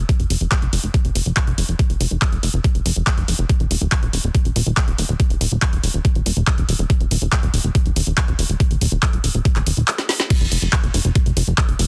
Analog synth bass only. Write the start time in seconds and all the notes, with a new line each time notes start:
0.20 F1
0.30 F1
0.41 F1
0.62 F1
0.73 F1
0.84 F1
1.05 F1
1.15 F1
1.26 F1
1.47 F1
1.58 F1
1.69 F1
1.90 F1
2.01 F1
2.11 F1
2.32 F1
2.43 F1
2.54 F1
2.75 F1
2.86 F1
2.96 F1
3.18 F1
3.28 F1
3.39 F1
3.60 D#1
3.71 D#1
3.81 D#1
4.03 D#1
4.13 D#1
4.24 D#1
4.45 D#1
4.56 D#1
4.67 D#1
4.88 D#1
4.98 D#1
5.09 D#1
5.30 D#1
5.41 D#1
5.52 D#1
5.73 D#1
5.84 D#1
5.94 D#1
6.15 D#1
6.26 D#1
6.37 D#1
6.58 D#1
6.69 D#1
6.79 D#1
7.01 D#1
7.11 D#1
7.22 D#1
7.43 D#1
7.54 D#1
7.64 D#1
7.86 D#1
7.96 D#1
8.07 D#1
8.28 D#1
8.39 D#1
8.49 D#1
8.71 D#1
8.81 D#1
8.92 D#1
9.13 D#1
9.24 D#1
9.35 D#1
9.56 D#1
9.67 D#1
9.77 D#1
10.41 F1
10.52 F1
10.62 F1
10.84 F1
10.94 F1
11.05 F1
11.26 F1
11.37 F1
11.47 F1
11.69 F1
11.79 F1